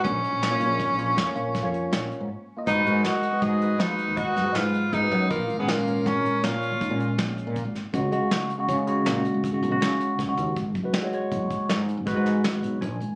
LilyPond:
<<
  \new Staff \with { instrumentName = "Flugelhorn" } { \time 7/4 \key gis \dorian \tempo 4 = 160 r1. r4 | b'4 dis''4 dis''4 b'4 dis''4 b'4 b'4 | eis'8. gis'16 eis'4 ais'4 cis''2 r2 | r1. r4 |
r1. r4 | }
  \new Staff \with { instrumentName = "Tenor saxophone" } { \time 7/4 \key gis \dorian cis'1. r4 | dis'4 fis'4 gis'4 dis'4 fis'4 eis'4 dis'4 | ais8. b16 ais4 cis'4 eis'2 r2 | r1. r4 |
r1. r4 | }
  \new Staff \with { instrumentName = "Tine electric piano" } { \time 7/4 \key gis \dorian r4 r16 <ais eis' cis''>16 <ais eis' cis''>8. r16 <ais eis' cis''>8 <ais eis' cis''>8 <ais eis' cis''>8. <ais eis' cis''>4.~ <ais eis' cis''>16 r8. <ais eis' dis''>16 | <gis fis' b'>8 <gis fis' ais'>4 r16 <gis fis' b'>8 <gis fis' b'>16 <gis fis' b'>8. <gis fis' b'>8. r16 <gis fis' b'>8 <fis gis b'>4~ <fis gis b'>16 r16 <gis fis' b'>8. | r8. <ais, gis cis'>8 <ais, gis cis'>16 <ais, gis cis'>4.~ <ais, gis cis'>16 r8. <ais, gis dis'>16 <ais, gis cis'>4.~ <ais, gis cis'>16 r4 | <cis gis fis'>8 <cis gis fis'>4 r16 <cis gis fis'>8 <cis gis gis'>16 <cis gis fis'>8. <cis gis fis'>8. r16 <cis gis fis'>8 <cis gis fis'>4~ <cis gis fis'>16 r16 <cis gis fis'>8. |
r8. <gis fis' b'>8 <gis fis' cis''>16 <gis fis' cis''>4.~ <gis fis' cis''>16 r8. <gis fis' b'>16 <gis fis' b'>4.~ <gis fis' b'>16 gis''4 | }
  \new Staff \with { instrumentName = "Fretless electric bass" } { \clef bass \time 7/4 \key gis \dorian ais,,8 r16 ais,,8. ais,,8. ais,,8. eis,16 r16 ais,,8. eis,8. ais,,8 r16 gis,16 r4 | gis,8 gis,8 r4 gis,4 eis8 r16 dis,8. fis,16 gis,16 gis,4 gis,8 fis,8 | ais,,8 gis,,4. gis,,8 r8 ais,8. ais,,8 ais,8. ais,,8. ais,8 gis,,8 r16 | cis,8 cis,8 r4 cis4 ais,8 r16 gis,,8. ais,,16 cis16 cis4 cis,8 dis,8 |
gis,,8 fis,,4. fis,,8 r8 gis,8. gis,,8 gis,8. gis,,8 b,,8 ais,,8 gis,,8 | }
  \new DrumStaff \with { instrumentName = "Drums" } \drummode { \time 7/4 <hh bd>8 hh8 <hh sn>8 hh8 <hh bd sn>8 hh8 <hh sn>8 hh8 <hh bd sn>8 hh8 <hh sn>8 hh8 r4 | <hh bd>8 hh8 <hh sn>8 hh8 <hh bd>8 hh8 <hh sn>8 hh8 <hh bd>8 <hh sn>8 <hh sn>8 hh8 <hh bd>8 hh8 | <hh bd>8 hh8 <hh sn>8 hh8 <hh bd sn>8 hh8 <hh sn>8 hh8 <hh bd>8 hh8 <hh sn>8 hh8 <hh bd>8 <hh sn>8 | <hh bd>8 hh8 <hh sn>8 hh8 <hh bd>8 hh8 <hh sn>8 hh8 <hh bd>8 hh8 <hh sn>8 hh8 <hh bd sn>8 hh8 |
<hh bd>8 <hh bd>8 <hh sn>8 hh8 <hh bd>8 <hh bd>8 <hh sn>8 hh8 <hh bd sn>8 <hh sn>8 <hh sn>8 hh8 <hh bd>8 hh8 | }
>>